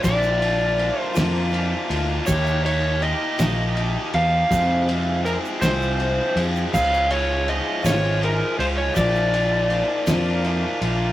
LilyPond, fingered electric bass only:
\new Staff \with { instrumentName = "Fingered electric bass" } { \clef bass \time 6/8 \key bes \dorian \tempo 4. = 54 bes,,4. f,4 d,8 | ees,4. bes,,4 e,8 | f,4. c,4 f,8 | des,4. aes,,4 des,8 |
bes,,4. f,4 bes,,8 | }